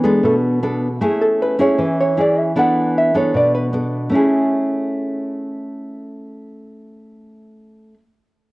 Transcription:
0.00 0.20 E3 medium
0.00 0.22 G#3 medium
0.00 0.58 B3 medium
0.00 0.22 G#4 medium
0.04 0.59 D4 medium
0.04 0.59 A4 medium
0.23 0.99 B2 medium
0.23 0.36 A3 medium
0.23 0.36 A4 medium
0.63 0.87 B3 medium
0.63 0.87 D4 soft
0.63 0.87 A4 medium
1.01 1.76 A3 medium
1.01 1.56 C#4 medium
1.01 1.56 E4 medium
1.01 1.56 G#4 medium
1.21 1.39 A4 medium
1.42 1.59 B4 medium
1.59 2.14 C#4 medium
1.59 2.14 E4 medium
1.59 2.14 G#4 medium
1.59 1.81 C#5 medium
1.78 2.54 E3 medium
1.78 1.98 B4 medium
2.00 2.18 C#5 medium
2.17 2.53 C#4 soft
2.17 2.53 E4 soft
2.17 2.53 G#4 soft
2.17 2.39 D5 medium
2.39 2.57 E5 medium
2.56 3.32 E3 medium
2.56 3.11 B3 medium
2.56 3.11 D4 medium
2.56 3.12 A4 medium
2.56 2.94 F#5 medium
2.98 3.15 E5 medium
3.14 3.70 B3 medium
3.14 3.70 D4 medium
3.14 3.70 A4 medium
3.14 3.35 C#5 medium
3.34 4.10 B2 medium
3.34 3.54 D5 medium
3.55 3.66 B4 medium
3.73 4.09 B3 soft
3.73 4.09 D4 soft
3.73 4.09 A4 soft
4.10 7.94 A3 medium
4.10 7.96 C#4 medium
4.14 7.98 E4 medium
4.14 7.99 G#4 medium

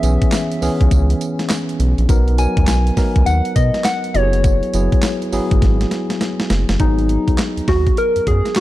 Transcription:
0.00 0.18 B1 loud
0.00 0.03 E3 medium
0.00 0.47 E3 medium
0.00 0.03 B3 medium
0.00 0.47 B3 medium
0.00 0.03 C#4 medium
0.00 0.47 C#4 medium
0.00 0.04 G#4 medium
0.00 0.47 G#4 medium
0.00 1.80 E5 loud
0.00 closed hi-hat medium
0.00 tambourine medium
0.22 kick medium
0.22 closed hi-hat medium
0.32 snare loud
0.32 clap medium
0.32 closed hi-hat medium
0.32 tambourine medium
0.52 closed hi-hat medium
0.62 0.70 C#2 soft
0.62 1.45 E3 medium
0.62 1.45 B3 medium
0.62 1.46 C#4 medium
0.62 1.46 G#4 loud
0.62 open hi-hat medium
0.62 tambourine medium
0.81 0.89 C#2 loud
0.81 kick loud
0.81 closed hi-hat medium
0.91 1.15 C#2 loud
0.91 kick loud
0.91 closed hi-hat medium
0.91 tambourine medium
1.10 closed hi-hat medium
1.21 closed hi-hat medium
1.21 tambourine medium
1.39 snare medium
1.39 closed hi-hat medium
1.49 snare loud
1.49 clap medium
1.49 closed hi-hat medium
1.49 tambourine medium
1.69 closed hi-hat soft
1.80 1.94 B1 loud
1.80 closed hi-hat medium
1.98 2.07 A#1 medium
1.98 closed hi-hat medium
2.09 2.47 B1 loud
2.09 2.32 F#3 medium
2.09 2.32 B3 medium
2.09 2.32 D#4 medium
2.09 2.32 A#4 loud
2.09 kick loud
2.09 closed hi-hat medium
2.09 tambourine medium
2.28 closed hi-hat soft
2.38 2.82 F#3 medium
2.38 2.83 B3 medium
2.38 2.83 D#4 medium
2.38 2.83 A#4 medium
2.38 3.28 G#5 loud
2.38 closed hi-hat medium
2.38 tambourine medium
2.57 2.66 D#2 loud
2.57 kick loud
2.57 closed hi-hat medium
2.67 2.91 B1 loud
2.67 snare loud
2.67 clap medium
2.67 closed hi-hat medium
2.67 tambourine loud
2.87 closed hi-hat medium
2.97 3.80 F#3 medium
2.97 3.81 B3 medium
2.97 3.81 D#4 medium
2.97 3.81 A#4 medium
2.97 kick medium
2.97 snare medium
2.97 open hi-hat medium
2.97 tambourine medium
3.16 3.24 C#2 loud
3.16 kick medium
3.16 closed hi-hat medium
3.26 3.41 D#2 loud
3.26 3.57 F#5 loud
3.26 closed hi-hat medium
3.26 tambourine medium
3.45 closed hi-hat medium
3.56 3.71 B2 loud
3.56 3.86 D#5 loud
3.56 kick medium
3.56 closed hi-hat medium
3.56 tambourine medium
3.74 snare medium
3.74 closed hi-hat medium
3.84 4.16 F#5 loud
3.84 snare loud
3.84 clap medium
3.84 closed hi-hat medium
3.84 tambourine medium
4.04 closed hi-hat medium
4.14 4.61 F#1 loud
4.14 4.65 F#3 medium
4.14 4.65 B3 medium
4.14 4.66 E4 medium
4.14 4.24 G4 medium
4.14 5.91 C#5 loud
4.14 closed hi-hat medium
4.22 4.69 G#4 medium
4.33 closed hi-hat medium
4.44 kick loud
4.44 closed hi-hat medium
4.44 tambourine medium
4.63 closed hi-hat soft
4.73 4.89 F#1 medium
4.73 5.18 F#3 medium
4.73 5.18 B3 medium
4.73 5.18 E4 medium
4.73 5.18 G#4 medium
4.73 closed hi-hat medium
4.73 tambourine medium
4.92 kick loud
4.92 closed hi-hat medium
5.02 snare loud
5.02 clap medium
5.02 closed hi-hat medium
5.02 tambourine loud
5.22 closed hi-hat medium
5.32 5.40 G#1 soft
5.32 6.16 F#3 loud
5.32 6.16 B3 medium
5.32 6.16 E4 medium
5.32 6.17 G#4 loud
5.32 open hi-hat medium
5.32 tambourine medium
5.51 5.60 G#1 medium
5.51 kick loud
5.51 closed hi-hat medium
5.62 5.85 G#1 loud
5.62 kick loud
5.62 snare medium
5.62 closed hi-hat medium
5.81 snare medium
5.81 closed hi-hat medium
5.91 snare medium
5.91 closed hi-hat medium
6.10 snare medium
6.10 closed hi-hat medium
6.21 snare loud
6.21 closed hi-hat medium
6.40 snare medium
6.40 closed hi-hat medium
6.50 6.65 F#1 medium
6.50 snare loud
6.50 closed hi-hat medium
6.69 6.77 F#1 medium
6.69 snare loud
6.69 closed hi-hat medium
6.80 7.18 G#1 loud
6.80 7.63 F#3 medium
6.80 7.63 B3 medium
6.80 7.70 D#4 loud
6.80 7.64 D#4 medium
6.80 7.64 G#4 medium
6.80 kick loud
6.80 closed hi-hat medium
6.99 closed hi-hat soft
7.09 closed hi-hat medium
7.28 7.36 B1 loud
7.28 kick medium
7.28 closed hi-hat medium
7.38 snare loud
7.38 clap medium
7.38 closed hi-hat medium
7.57 7.61 D#2 medium
7.57 closed hi-hat medium
7.68 7.91 D#2 medium
7.68 8.00 F#4 loud
7.68 kick medium
7.68 snare medium
7.68 open hi-hat medium
7.87 kick medium
7.87 closed hi-hat medium
7.97 8.27 A#4 loud
7.97 closed hi-hat medium
8.16 8.20 F#2 soft
8.16 closed hi-hat medium
8.27 8.42 F#2 loud
8.27 8.58 G#4 loud
8.27 kick medium
8.27 closed hi-hat medium
8.45 snare medium
8.45 closed hi-hat medium
8.55 8.60 F#4 loud
8.55 snare loud
8.55 clap medium
8.55 closed hi-hat medium

